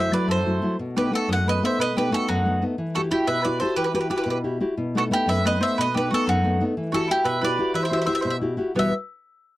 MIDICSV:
0, 0, Header, 1, 4, 480
1, 0, Start_track
1, 0, Key_signature, 1, "minor"
1, 0, Tempo, 332226
1, 1121, Time_signature, 6, 3, 24, 8
1, 13827, End_track
2, 0, Start_track
2, 0, Title_t, "Mandolin"
2, 0, Program_c, 0, 25
2, 0, Note_on_c, 0, 76, 83
2, 175, Note_off_c, 0, 76, 0
2, 193, Note_on_c, 0, 74, 87
2, 397, Note_off_c, 0, 74, 0
2, 448, Note_on_c, 0, 72, 79
2, 1097, Note_off_c, 0, 72, 0
2, 1410, Note_on_c, 0, 71, 72
2, 1612, Note_off_c, 0, 71, 0
2, 1666, Note_on_c, 0, 69, 85
2, 1858, Note_off_c, 0, 69, 0
2, 1916, Note_on_c, 0, 78, 84
2, 2117, Note_off_c, 0, 78, 0
2, 2155, Note_on_c, 0, 75, 84
2, 2367, Note_off_c, 0, 75, 0
2, 2382, Note_on_c, 0, 76, 76
2, 2576, Note_off_c, 0, 76, 0
2, 2620, Note_on_c, 0, 75, 100
2, 2829, Note_off_c, 0, 75, 0
2, 2859, Note_on_c, 0, 71, 77
2, 3058, Note_off_c, 0, 71, 0
2, 3095, Note_on_c, 0, 69, 92
2, 3293, Note_off_c, 0, 69, 0
2, 3301, Note_on_c, 0, 66, 67
2, 3799, Note_off_c, 0, 66, 0
2, 4269, Note_on_c, 0, 69, 77
2, 4341, Note_off_c, 0, 69, 0
2, 4500, Note_on_c, 0, 67, 74
2, 4710, Note_off_c, 0, 67, 0
2, 4731, Note_on_c, 0, 76, 87
2, 4959, Note_off_c, 0, 76, 0
2, 4978, Note_on_c, 0, 74, 73
2, 5192, Note_off_c, 0, 74, 0
2, 5198, Note_on_c, 0, 72, 68
2, 5432, Note_off_c, 0, 72, 0
2, 5438, Note_on_c, 0, 71, 79
2, 5533, Note_off_c, 0, 71, 0
2, 5550, Note_on_c, 0, 71, 52
2, 5657, Note_off_c, 0, 71, 0
2, 5704, Note_on_c, 0, 71, 60
2, 5770, Note_off_c, 0, 71, 0
2, 5788, Note_on_c, 0, 71, 47
2, 5880, Note_off_c, 0, 71, 0
2, 5933, Note_on_c, 0, 71, 67
2, 6007, Note_off_c, 0, 71, 0
2, 6032, Note_on_c, 0, 71, 54
2, 6103, Note_off_c, 0, 71, 0
2, 6120, Note_on_c, 0, 71, 42
2, 6199, Note_off_c, 0, 71, 0
2, 6217, Note_on_c, 0, 71, 52
2, 6316, Note_off_c, 0, 71, 0
2, 7197, Note_on_c, 0, 69, 77
2, 7269, Note_off_c, 0, 69, 0
2, 7418, Note_on_c, 0, 67, 84
2, 7638, Note_off_c, 0, 67, 0
2, 7642, Note_on_c, 0, 76, 77
2, 7862, Note_off_c, 0, 76, 0
2, 7898, Note_on_c, 0, 75, 95
2, 8099, Note_off_c, 0, 75, 0
2, 8130, Note_on_c, 0, 76, 80
2, 8353, Note_off_c, 0, 76, 0
2, 8390, Note_on_c, 0, 75, 104
2, 8618, Note_off_c, 0, 75, 0
2, 8630, Note_on_c, 0, 71, 74
2, 8824, Note_off_c, 0, 71, 0
2, 8874, Note_on_c, 0, 69, 88
2, 9063, Note_off_c, 0, 69, 0
2, 9085, Note_on_c, 0, 66, 76
2, 9571, Note_off_c, 0, 66, 0
2, 10031, Note_on_c, 0, 69, 82
2, 10239, Note_off_c, 0, 69, 0
2, 10275, Note_on_c, 0, 67, 92
2, 10478, Note_off_c, 0, 67, 0
2, 10481, Note_on_c, 0, 76, 85
2, 10713, Note_off_c, 0, 76, 0
2, 10757, Note_on_c, 0, 74, 99
2, 11178, Note_off_c, 0, 74, 0
2, 11202, Note_on_c, 0, 76, 79
2, 11305, Note_off_c, 0, 76, 0
2, 11342, Note_on_c, 0, 76, 64
2, 11432, Note_off_c, 0, 76, 0
2, 11461, Note_on_c, 0, 76, 65
2, 11543, Note_off_c, 0, 76, 0
2, 11581, Note_on_c, 0, 76, 52
2, 11635, Note_off_c, 0, 76, 0
2, 11653, Note_on_c, 0, 76, 72
2, 11742, Note_off_c, 0, 76, 0
2, 11774, Note_on_c, 0, 76, 72
2, 11857, Note_off_c, 0, 76, 0
2, 11880, Note_on_c, 0, 76, 51
2, 11965, Note_off_c, 0, 76, 0
2, 11997, Note_on_c, 0, 76, 60
2, 12083, Note_off_c, 0, 76, 0
2, 12699, Note_on_c, 0, 76, 87
2, 12906, Note_off_c, 0, 76, 0
2, 13827, End_track
3, 0, Start_track
3, 0, Title_t, "Mandolin"
3, 0, Program_c, 1, 25
3, 0, Note_on_c, 1, 72, 81
3, 152, Note_off_c, 1, 72, 0
3, 193, Note_on_c, 1, 71, 72
3, 397, Note_off_c, 1, 71, 0
3, 412, Note_on_c, 1, 69, 50
3, 1078, Note_off_c, 1, 69, 0
3, 1395, Note_on_c, 1, 67, 71
3, 1604, Note_off_c, 1, 67, 0
3, 1637, Note_on_c, 1, 66, 54
3, 1843, Note_off_c, 1, 66, 0
3, 1862, Note_on_c, 1, 75, 71
3, 2089, Note_off_c, 1, 75, 0
3, 2135, Note_on_c, 1, 71, 78
3, 2335, Note_off_c, 1, 71, 0
3, 2398, Note_on_c, 1, 72, 62
3, 2585, Note_off_c, 1, 72, 0
3, 2599, Note_on_c, 1, 71, 81
3, 2818, Note_off_c, 1, 71, 0
3, 2840, Note_on_c, 1, 67, 73
3, 3048, Note_off_c, 1, 67, 0
3, 3068, Note_on_c, 1, 66, 66
3, 3279, Note_off_c, 1, 66, 0
3, 3304, Note_on_c, 1, 63, 65
3, 3801, Note_off_c, 1, 63, 0
3, 4261, Note_on_c, 1, 66, 69
3, 4333, Note_off_c, 1, 66, 0
3, 4491, Note_on_c, 1, 64, 53
3, 4706, Note_off_c, 1, 64, 0
3, 4725, Note_on_c, 1, 71, 65
3, 4920, Note_off_c, 1, 71, 0
3, 4937, Note_on_c, 1, 71, 61
3, 5170, Note_off_c, 1, 71, 0
3, 5218, Note_on_c, 1, 69, 64
3, 5430, Note_off_c, 1, 69, 0
3, 5447, Note_on_c, 1, 67, 67
3, 5549, Note_off_c, 1, 67, 0
3, 5577, Note_on_c, 1, 67, 50
3, 5671, Note_off_c, 1, 67, 0
3, 5705, Note_on_c, 1, 67, 44
3, 5766, Note_off_c, 1, 67, 0
3, 5783, Note_on_c, 1, 67, 41
3, 5877, Note_off_c, 1, 67, 0
3, 5923, Note_on_c, 1, 67, 54
3, 5995, Note_off_c, 1, 67, 0
3, 6013, Note_on_c, 1, 67, 45
3, 6075, Note_off_c, 1, 67, 0
3, 6092, Note_on_c, 1, 67, 48
3, 6193, Note_off_c, 1, 67, 0
3, 6220, Note_on_c, 1, 67, 44
3, 6317, Note_off_c, 1, 67, 0
3, 7184, Note_on_c, 1, 66, 80
3, 7256, Note_off_c, 1, 66, 0
3, 7398, Note_on_c, 1, 64, 58
3, 7606, Note_off_c, 1, 64, 0
3, 7635, Note_on_c, 1, 71, 67
3, 7858, Note_off_c, 1, 71, 0
3, 7882, Note_on_c, 1, 71, 81
3, 8091, Note_off_c, 1, 71, 0
3, 8100, Note_on_c, 1, 72, 74
3, 8316, Note_off_c, 1, 72, 0
3, 8351, Note_on_c, 1, 71, 107
3, 8575, Note_off_c, 1, 71, 0
3, 8587, Note_on_c, 1, 67, 78
3, 8802, Note_off_c, 1, 67, 0
3, 8822, Note_on_c, 1, 66, 80
3, 9035, Note_off_c, 1, 66, 0
3, 9054, Note_on_c, 1, 63, 59
3, 9555, Note_off_c, 1, 63, 0
3, 9999, Note_on_c, 1, 66, 76
3, 10219, Note_off_c, 1, 66, 0
3, 10225, Note_on_c, 1, 64, 58
3, 10451, Note_off_c, 1, 64, 0
3, 10466, Note_on_c, 1, 71, 65
3, 10695, Note_off_c, 1, 71, 0
3, 10712, Note_on_c, 1, 71, 82
3, 11154, Note_off_c, 1, 71, 0
3, 11186, Note_on_c, 1, 71, 72
3, 11296, Note_off_c, 1, 71, 0
3, 11310, Note_on_c, 1, 72, 53
3, 11392, Note_off_c, 1, 72, 0
3, 11410, Note_on_c, 1, 72, 46
3, 11503, Note_off_c, 1, 72, 0
3, 11521, Note_on_c, 1, 72, 53
3, 11623, Note_off_c, 1, 72, 0
3, 11639, Note_on_c, 1, 72, 63
3, 11735, Note_off_c, 1, 72, 0
3, 11750, Note_on_c, 1, 72, 48
3, 11844, Note_off_c, 1, 72, 0
3, 11859, Note_on_c, 1, 72, 55
3, 11934, Note_off_c, 1, 72, 0
3, 11951, Note_on_c, 1, 72, 42
3, 12058, Note_off_c, 1, 72, 0
3, 12652, Note_on_c, 1, 59, 66
3, 12881, Note_off_c, 1, 59, 0
3, 13827, End_track
4, 0, Start_track
4, 0, Title_t, "Nylon-string guitar"
4, 0, Program_c, 2, 24
4, 0, Note_on_c, 2, 42, 48
4, 0, Note_on_c, 2, 54, 52
4, 0, Note_on_c, 2, 57, 43
4, 0, Note_on_c, 2, 64, 57
4, 149, Note_off_c, 2, 54, 0
4, 160, Note_off_c, 2, 57, 0
4, 161, Note_off_c, 2, 64, 0
4, 162, Note_off_c, 2, 42, 0
4, 167, Note_on_c, 2, 54, 51
4, 176, Note_on_c, 2, 57, 41
4, 184, Note_on_c, 2, 64, 52
4, 393, Note_on_c, 2, 42, 55
4, 555, Note_off_c, 2, 54, 0
4, 561, Note_off_c, 2, 57, 0
4, 562, Note_off_c, 2, 64, 0
4, 655, Note_on_c, 2, 54, 41
4, 667, Note_on_c, 2, 57, 38
4, 669, Note_on_c, 2, 64, 38
4, 868, Note_off_c, 2, 42, 0
4, 875, Note_off_c, 2, 54, 0
4, 891, Note_off_c, 2, 57, 0
4, 892, Note_off_c, 2, 64, 0
4, 892, Note_on_c, 2, 54, 50
4, 907, Note_on_c, 2, 57, 41
4, 914, Note_on_c, 2, 64, 49
4, 1078, Note_off_c, 2, 54, 0
4, 1088, Note_off_c, 2, 57, 0
4, 1088, Note_off_c, 2, 64, 0
4, 1146, Note_on_c, 2, 47, 59
4, 1390, Note_on_c, 2, 57, 44
4, 1397, Note_on_c, 2, 63, 50
4, 1403, Note_on_c, 2, 59, 45
4, 1592, Note_off_c, 2, 57, 0
4, 1594, Note_off_c, 2, 63, 0
4, 1601, Note_off_c, 2, 59, 0
4, 1608, Note_off_c, 2, 47, 0
4, 1608, Note_on_c, 2, 57, 42
4, 1615, Note_on_c, 2, 63, 60
4, 1619, Note_on_c, 2, 59, 47
4, 1851, Note_on_c, 2, 42, 58
4, 1999, Note_off_c, 2, 57, 0
4, 2001, Note_off_c, 2, 63, 0
4, 2005, Note_off_c, 2, 59, 0
4, 2106, Note_on_c, 2, 57, 42
4, 2111, Note_on_c, 2, 63, 39
4, 2119, Note_on_c, 2, 59, 39
4, 2320, Note_off_c, 2, 42, 0
4, 2336, Note_off_c, 2, 57, 0
4, 2337, Note_off_c, 2, 59, 0
4, 2345, Note_off_c, 2, 63, 0
4, 2350, Note_on_c, 2, 57, 49
4, 2358, Note_on_c, 2, 59, 50
4, 2362, Note_on_c, 2, 63, 53
4, 2580, Note_on_c, 2, 47, 51
4, 2733, Note_off_c, 2, 57, 0
4, 2734, Note_off_c, 2, 59, 0
4, 2739, Note_off_c, 2, 63, 0
4, 2837, Note_on_c, 2, 57, 47
4, 2850, Note_on_c, 2, 59, 42
4, 2859, Note_on_c, 2, 63, 52
4, 3035, Note_off_c, 2, 57, 0
4, 3045, Note_off_c, 2, 47, 0
4, 3047, Note_off_c, 2, 59, 0
4, 3047, Note_off_c, 2, 63, 0
4, 3052, Note_on_c, 2, 57, 50
4, 3064, Note_on_c, 2, 63, 47
4, 3067, Note_on_c, 2, 59, 49
4, 3305, Note_on_c, 2, 42, 66
4, 3441, Note_off_c, 2, 57, 0
4, 3448, Note_off_c, 2, 63, 0
4, 3449, Note_off_c, 2, 59, 0
4, 3550, Note_on_c, 2, 57, 39
4, 3557, Note_on_c, 2, 59, 40
4, 3563, Note_on_c, 2, 63, 42
4, 3763, Note_off_c, 2, 57, 0
4, 3766, Note_off_c, 2, 42, 0
4, 3769, Note_off_c, 2, 63, 0
4, 3777, Note_off_c, 2, 59, 0
4, 3780, Note_on_c, 2, 57, 47
4, 3787, Note_on_c, 2, 63, 60
4, 3794, Note_on_c, 2, 59, 42
4, 3963, Note_off_c, 2, 57, 0
4, 3967, Note_off_c, 2, 63, 0
4, 3971, Note_off_c, 2, 59, 0
4, 4019, Note_on_c, 2, 52, 56
4, 4284, Note_on_c, 2, 64, 49
4, 4294, Note_on_c, 2, 66, 40
4, 4302, Note_on_c, 2, 67, 57
4, 4480, Note_off_c, 2, 52, 0
4, 4481, Note_off_c, 2, 64, 0
4, 4488, Note_off_c, 2, 66, 0
4, 4491, Note_off_c, 2, 67, 0
4, 4498, Note_on_c, 2, 64, 44
4, 4503, Note_on_c, 2, 66, 47
4, 4513, Note_on_c, 2, 67, 51
4, 4729, Note_on_c, 2, 47, 69
4, 4881, Note_off_c, 2, 64, 0
4, 4885, Note_off_c, 2, 66, 0
4, 4887, Note_off_c, 2, 67, 0
4, 4988, Note_on_c, 2, 64, 46
4, 4997, Note_on_c, 2, 66, 34
4, 5006, Note_on_c, 2, 67, 42
4, 5195, Note_off_c, 2, 47, 0
4, 5206, Note_off_c, 2, 64, 0
4, 5216, Note_off_c, 2, 66, 0
4, 5223, Note_off_c, 2, 67, 0
4, 5223, Note_on_c, 2, 64, 46
4, 5234, Note_on_c, 2, 66, 43
4, 5241, Note_on_c, 2, 67, 53
4, 5443, Note_on_c, 2, 52, 58
4, 5605, Note_off_c, 2, 64, 0
4, 5611, Note_off_c, 2, 66, 0
4, 5616, Note_off_c, 2, 67, 0
4, 5691, Note_on_c, 2, 66, 45
4, 5697, Note_on_c, 2, 67, 48
4, 5698, Note_on_c, 2, 64, 49
4, 5902, Note_off_c, 2, 66, 0
4, 5909, Note_off_c, 2, 64, 0
4, 5913, Note_off_c, 2, 67, 0
4, 5914, Note_off_c, 2, 52, 0
4, 5919, Note_on_c, 2, 66, 41
4, 5929, Note_on_c, 2, 64, 45
4, 5930, Note_on_c, 2, 67, 49
4, 6152, Note_on_c, 2, 47, 64
4, 6314, Note_off_c, 2, 66, 0
4, 6319, Note_off_c, 2, 64, 0
4, 6321, Note_off_c, 2, 67, 0
4, 6416, Note_on_c, 2, 67, 47
4, 6421, Note_on_c, 2, 64, 45
4, 6425, Note_on_c, 2, 66, 38
4, 6633, Note_off_c, 2, 47, 0
4, 6634, Note_off_c, 2, 66, 0
4, 6641, Note_off_c, 2, 64, 0
4, 6648, Note_off_c, 2, 67, 0
4, 6651, Note_on_c, 2, 66, 43
4, 6658, Note_on_c, 2, 64, 42
4, 6665, Note_on_c, 2, 67, 49
4, 6841, Note_off_c, 2, 66, 0
4, 6844, Note_off_c, 2, 64, 0
4, 6849, Note_off_c, 2, 67, 0
4, 6898, Note_on_c, 2, 47, 61
4, 7153, Note_on_c, 2, 57, 46
4, 7160, Note_on_c, 2, 59, 47
4, 7165, Note_on_c, 2, 63, 51
4, 7362, Note_off_c, 2, 59, 0
4, 7367, Note_off_c, 2, 47, 0
4, 7368, Note_off_c, 2, 57, 0
4, 7378, Note_off_c, 2, 63, 0
4, 7384, Note_on_c, 2, 57, 58
4, 7384, Note_on_c, 2, 59, 46
4, 7395, Note_on_c, 2, 63, 55
4, 7604, Note_on_c, 2, 42, 69
4, 7768, Note_off_c, 2, 59, 0
4, 7771, Note_off_c, 2, 57, 0
4, 7777, Note_off_c, 2, 63, 0
4, 7879, Note_on_c, 2, 57, 45
4, 7885, Note_on_c, 2, 63, 45
4, 7888, Note_on_c, 2, 59, 35
4, 8066, Note_off_c, 2, 57, 0
4, 8079, Note_off_c, 2, 42, 0
4, 8081, Note_off_c, 2, 59, 0
4, 8083, Note_on_c, 2, 57, 53
4, 8089, Note_off_c, 2, 63, 0
4, 8098, Note_on_c, 2, 59, 47
4, 8107, Note_on_c, 2, 63, 56
4, 8357, Note_on_c, 2, 47, 66
4, 8476, Note_off_c, 2, 57, 0
4, 8485, Note_off_c, 2, 59, 0
4, 8491, Note_off_c, 2, 63, 0
4, 8596, Note_on_c, 2, 57, 52
4, 8605, Note_on_c, 2, 59, 47
4, 8607, Note_on_c, 2, 63, 50
4, 8814, Note_off_c, 2, 47, 0
4, 8822, Note_off_c, 2, 57, 0
4, 8830, Note_off_c, 2, 59, 0
4, 8835, Note_off_c, 2, 63, 0
4, 8839, Note_on_c, 2, 57, 53
4, 8848, Note_on_c, 2, 59, 49
4, 8852, Note_on_c, 2, 63, 52
4, 9065, Note_on_c, 2, 42, 72
4, 9217, Note_off_c, 2, 57, 0
4, 9221, Note_off_c, 2, 59, 0
4, 9224, Note_off_c, 2, 63, 0
4, 9300, Note_on_c, 2, 57, 49
4, 9309, Note_on_c, 2, 63, 51
4, 9312, Note_on_c, 2, 59, 39
4, 9526, Note_off_c, 2, 42, 0
4, 9527, Note_off_c, 2, 57, 0
4, 9534, Note_off_c, 2, 59, 0
4, 9539, Note_off_c, 2, 63, 0
4, 9544, Note_on_c, 2, 57, 46
4, 9555, Note_on_c, 2, 59, 45
4, 9555, Note_on_c, 2, 63, 58
4, 9725, Note_off_c, 2, 57, 0
4, 9729, Note_off_c, 2, 59, 0
4, 9732, Note_off_c, 2, 63, 0
4, 9781, Note_on_c, 2, 52, 51
4, 10015, Note_on_c, 2, 64, 51
4, 10031, Note_on_c, 2, 66, 48
4, 10032, Note_on_c, 2, 67, 46
4, 10241, Note_off_c, 2, 52, 0
4, 10243, Note_off_c, 2, 64, 0
4, 10247, Note_off_c, 2, 66, 0
4, 10251, Note_off_c, 2, 67, 0
4, 10262, Note_on_c, 2, 64, 57
4, 10264, Note_on_c, 2, 66, 52
4, 10269, Note_on_c, 2, 67, 61
4, 10470, Note_on_c, 2, 47, 67
4, 10641, Note_off_c, 2, 64, 0
4, 10644, Note_off_c, 2, 66, 0
4, 10647, Note_off_c, 2, 67, 0
4, 10728, Note_on_c, 2, 64, 45
4, 10738, Note_on_c, 2, 66, 40
4, 10745, Note_on_c, 2, 67, 49
4, 10944, Note_off_c, 2, 47, 0
4, 10947, Note_off_c, 2, 64, 0
4, 10959, Note_off_c, 2, 66, 0
4, 10962, Note_off_c, 2, 67, 0
4, 10964, Note_on_c, 2, 64, 56
4, 10974, Note_on_c, 2, 66, 51
4, 10983, Note_on_c, 2, 67, 51
4, 11187, Note_on_c, 2, 52, 65
4, 11352, Note_off_c, 2, 64, 0
4, 11359, Note_off_c, 2, 66, 0
4, 11361, Note_off_c, 2, 67, 0
4, 11433, Note_on_c, 2, 64, 46
4, 11441, Note_on_c, 2, 66, 52
4, 11444, Note_on_c, 2, 67, 52
4, 11646, Note_off_c, 2, 64, 0
4, 11658, Note_off_c, 2, 66, 0
4, 11663, Note_off_c, 2, 52, 0
4, 11663, Note_off_c, 2, 67, 0
4, 11664, Note_on_c, 2, 64, 48
4, 11674, Note_on_c, 2, 66, 46
4, 11683, Note_on_c, 2, 67, 57
4, 11918, Note_on_c, 2, 47, 71
4, 12060, Note_off_c, 2, 64, 0
4, 12067, Note_off_c, 2, 66, 0
4, 12071, Note_off_c, 2, 67, 0
4, 12157, Note_on_c, 2, 64, 46
4, 12171, Note_on_c, 2, 66, 39
4, 12176, Note_on_c, 2, 67, 45
4, 12364, Note_off_c, 2, 64, 0
4, 12376, Note_off_c, 2, 66, 0
4, 12382, Note_on_c, 2, 64, 51
4, 12390, Note_off_c, 2, 47, 0
4, 12390, Note_off_c, 2, 67, 0
4, 12394, Note_on_c, 2, 66, 49
4, 12408, Note_on_c, 2, 67, 51
4, 12579, Note_off_c, 2, 64, 0
4, 12586, Note_off_c, 2, 66, 0
4, 12594, Note_off_c, 2, 67, 0
4, 12639, Note_on_c, 2, 40, 47
4, 12648, Note_on_c, 2, 47, 44
4, 12652, Note_on_c, 2, 52, 44
4, 12655, Note_on_c, 2, 55, 53
4, 12670, Note_on_c, 2, 71, 61
4, 12675, Note_on_c, 2, 66, 47
4, 12875, Note_off_c, 2, 40, 0
4, 12877, Note_off_c, 2, 47, 0
4, 12881, Note_off_c, 2, 55, 0
4, 12882, Note_off_c, 2, 52, 0
4, 12891, Note_off_c, 2, 71, 0
4, 12892, Note_off_c, 2, 66, 0
4, 13827, End_track
0, 0, End_of_file